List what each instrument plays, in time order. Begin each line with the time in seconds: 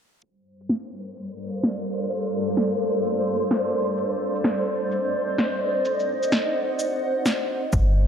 0.22 ambient pad G3, synth texture C5, shaker
0.49 ambient pad A#4
0.61 shaker
0.68 ambient pad C5 D5, snare
0.76 ambient pad A4
0.85 ambient pad F5
1.16 shaker
1.63 snare, shaker
2.10 shaker
2.25 shaker
2.48 shaker
2.57 snare, shaker
3.04 shaker
3.51 snare, shaker
3.98 shaker
4.35 shaker
4.44 snare, shaker
4.50 ambient pad D#5
4.91 shaker
5.38 snare, shaker
5.62 ambient pad F#5
5.85 shaker
6.00 shaker
6.23 shaker
6.32 snare, shaker
6.79 shaker
7.26 snare, shaker
7.73 sub bass G1, ambient pad G3, kick, shaker
7.92 ambient pad F4